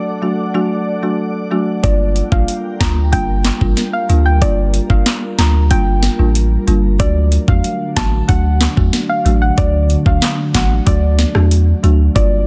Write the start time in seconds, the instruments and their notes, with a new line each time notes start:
Already playing: marimba F#3 A3 D4 F#4, ambient pad A4 D5 F#5 D6
0.22 marimba F#3 A3 D4 F#4
0.54 marimba F#3 A3 D4 F#4
1.03 marimba F#3 A3 D4 F#4
1.51 marimba F#3 A3 D4 F#4
1.83 sub bass G1, marimba G3 A#3 D4 F4, ambient pad G3 F4 A#4 G5, synth pluck D5, kick, closed hi-hat
2.16 closed hi-hat
2.32 sub bass A#1, marimba G3 A#3 D4 F4, synth pluck F5, kick
2.48 closed hi-hat
2.80 sub bass D2, marimba G3 A#3 D4 F4, synth pluck A#5, kick, snare, clap, closed hi-hat
3.12 sub bass G1, marimba G3 A#3 D4 F4, synth pluck G5, kick, closed hi-hat
3.45 snare, clap, closed hi-hat
3.61 sub bass A1, marimba G3 A#3 D4 F4, kick
3.77 snare, closed hi-hat
3.93 synth pluck F5
4.09 sub bass D2, marimba G3 A#3 D4 F4, closed hi-hat
4.26 synth pluck G5
4.41 sub bass G1, marimba G3 A#3 D4 F4, synth pluck D5, kick, closed hi-hat
4.74 closed hi-hat
4.90 sub bass G1, marimba G3 A#3 D4 F4, synth pluck F5, kick
5.06 snare, clap, closed hi-hat
5.38 sub bass D2, marimba G3 A#3 D4 F4, synth pluck A#5, snare, clap, closed hi-hat
5.70 sub bass G1, marimba G3 A#3 D4 F4, synth pluck G5, kick, closed hi-hat
6.03 snare, closed hi-hat
6.19 sub bass A1, marimba G3 A#3 D4 F4
6.35 closed hi-hat
6.67 sub bass G1, marimba G3 A#3 D4 F4, closed hi-hat
6.99 sub bass D2, ambient pad D3 D4 F#4, marimba F#3 A3 D4 F#4, synth pluck D5, kick, closed hi-hat
7.32 closed hi-hat
7.48 sub bass E2, marimba F#3 A3 D4 F#4, synth pluck F5, kick
7.64 closed hi-hat
7.96 sub bass A1, marimba F#3 A3 D4 F#4, synth pluck A5, kick, snare, clap, closed hi-hat
8.28 sub bass D2, marimba F#3 A3 D4 F#4, synth pluck F#5, kick, closed hi-hat
8.61 snare, clap, closed hi-hat
8.77 sub bass E2, marimba F#3 A3 D4 F#4, kick
8.93 snare, closed hi-hat
9.09 synth pluck F5
9.25 sub bass A1, marimba F#3 A3 D4 F#4, closed hi-hat
9.42 synth pluck F#5
9.57 sub bass D2, marimba F#3 A3 D4 F#4, synth pluck D5, kick, closed hi-hat
9.90 closed hi-hat
10.06 sub bass D2, marimba F#3 A3 D4 F#4, synth pluck F5, kick
10.22 snare, clap, closed hi-hat
10.54 sub bass A1, marimba F#3 A3 D4 F#4, synth pluck F#5, kick, snare, clap, closed hi-hat
10.86 sub bass D2, marimba F#3 A3 D4 F#4, synth pluck D5, kick, closed hi-hat
11.19 snare, closed hi-hat
11.35 sub bass E2, marimba F#3 A3 D4 F#4, cross-stick
11.51 closed hi-hat
11.83 sub bass D2, marimba F#3 A3 D4 F#4, closed hi-hat
12.15 sub bass G1, marimba G3 A#3 D4 F4, ambient pad G3 D4 A#4 F5, synth pluck D5, kick, closed hi-hat